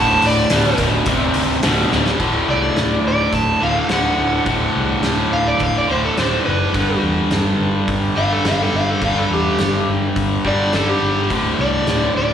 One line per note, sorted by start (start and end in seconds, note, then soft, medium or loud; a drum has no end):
0.00 0.15 D1 medium
0.00 0.45 D2 medium
0.00 0.46 A2 loud
0.00 0.24 A5 loud
0.22 0.44 D1 medium
0.22 open hi-hat medium
0.27 0.80 D5 loud
0.50 0.72 D1 loud
0.50 0.77 D2 medium
0.50 0.77 B2 loud
0.50 snare loud
0.50 open hi-hat medium
0.78 0.99 D1 medium
0.78 1.04 D2 medium
0.78 1.05 B2 medium
0.78 kick medium
0.78 open hi-hat medium
1.06 1.27 D1 medium
1.06 1.58 D2 medium
1.06 1.59 C3 loud
1.06 kick loud
1.06 open hi-hat medium
1.34 1.56 D2 medium
1.34 open hi-hat medium
1.63 1.84 D1 medium
1.63 1.89 D2 medium
1.63 1.89 B2 loud
1.63 snare loud
1.63 open hi-hat medium
1.91 2.13 D1 medium
1.91 2.17 D2 medium
1.91 2.17 B2 medium
1.91 snare medium
2.06 snare medium
2.18 2.40 D1 medium
2.18 3.59 D2 medium
2.18 3.60 A2 medium
2.18 3.59 D3 medium
2.18 kick medium
2.18 crash medium
2.49 2.68 C2 medium
2.49 3.04 D5 medium
2.76 2.97 D1 medium
2.76 snare medium
2.76 open hi-hat soft
3.05 3.25 D1 medium
3.05 3.34 D5 medium
3.33 3.53 D1 medium
3.33 3.62 A5 medium
3.33 kick medium
3.33 open hi-hat soft
3.60 3.82 D1 medium
3.60 3.89 A2 medium
3.60 3.88 D3 medium
3.60 3.90 F5 medium
3.65 3.88 D2 medium
3.89 4.10 D1 medium
3.89 4.45 D2 medium
3.89 4.46 A2 medium
3.89 4.47 D3 medium
3.89 5.01 F#5 medium
3.89 snare medium
3.89 open hi-hat soft
4.18 4.38 D1 medium
4.46 4.67 D1 medium
4.46 5.87 D2 medium
4.46 5.88 A2 medium
4.46 5.87 D3 medium
4.46 kick loud
4.46 open hi-hat soft
4.76 4.95 C2 medium
5.03 5.23 D1 medium
5.03 snare medium
5.03 open hi-hat soft
5.32 5.52 D1 medium
5.32 5.46 F5 medium
5.48 5.61 D5 medium
5.60 5.80 D1 medium
5.60 5.76 F5 medium
5.60 kick medium
5.60 open hi-hat soft
5.78 5.90 D5 medium
5.88 6.09 D1 medium
5.88 6.16 A2 medium
5.88 6.15 D3 medium
5.88 6.04 C5 medium
5.92 6.15 D2 medium
6.05 6.18 A4 medium
6.16 6.37 D1 medium
6.16 6.72 D2 medium
6.16 6.73 A2 medium
6.16 6.74 D3 medium
6.16 6.45 C5 medium
6.16 snare medium
6.16 open hi-hat soft
6.46 6.66 F#1 medium
6.46 7.01 B4 medium
6.74 6.94 G1 medium
6.74 8.15 G2 medium
6.74 8.16 D3 medium
6.74 kick loud
6.74 open hi-hat soft
6.78 8.15 G3 medium
7.03 7.23 E2 medium
7.31 7.51 G1 medium
7.31 snare medium
7.31 open hi-hat soft
7.60 7.80 G1 medium
7.88 8.08 G1 medium
7.88 kick loud
7.88 open hi-hat soft
8.16 8.37 G1 medium
8.16 8.43 G2 medium
8.16 8.45 D3 medium
8.16 8.43 G3 medium
8.16 8.31 F5 medium
8.32 8.46 A4 medium
8.45 8.65 G1 medium
8.45 9.00 G2 medium
8.45 9.01 D3 medium
8.45 8.61 F5 medium
8.45 snare medium
8.45 open hi-hat soft
8.49 9.02 G3 medium
8.62 8.75 A4 medium
8.73 8.93 G1 medium
8.73 8.89 F5 medium
8.90 9.03 A4 medium
9.02 9.22 G1 medium
9.02 10.43 G2 medium
9.02 10.44 D3 medium
9.02 10.43 G3 medium
9.02 9.17 F5 medium
9.02 kick loud
9.02 open hi-hat soft
9.18 9.31 A4 medium
9.30 9.50 E2 medium
9.30 9.88 G4 medium
9.59 9.79 G1 medium
9.59 snare medium
9.59 open hi-hat soft
9.88 10.08 G1 medium
10.16 10.36 G1 medium
10.16 kick loud
10.16 open hi-hat soft
10.45 10.65 G1 medium
10.45 10.72 G2 medium
10.45 10.73 D3 medium
10.45 10.72 G3 medium
10.45 10.74 D5 medium
10.45 kick medium
10.73 10.93 G1 medium
10.73 11.29 G2 medium
10.73 11.30 D3 medium
10.73 10.88 A4 medium
10.73 snare loud
10.73 open hi-hat soft
10.77 11.31 G3 medium
10.89 11.30 G4 medium
11.02 11.31 G1 medium
11.29 11.50 D1 medium
11.29 12.34 D2 medium
11.29 12.34 A2 medium
11.29 12.34 D3 medium
11.29 kick medium
11.29 open hi-hat soft
11.59 11.79 C2 medium
11.59 12.16 D5 medium
11.87 12.07 D1 medium
11.87 snare medium
11.87 open hi-hat soft
12.16 12.34 D1 medium
12.16 12.34 D5 medium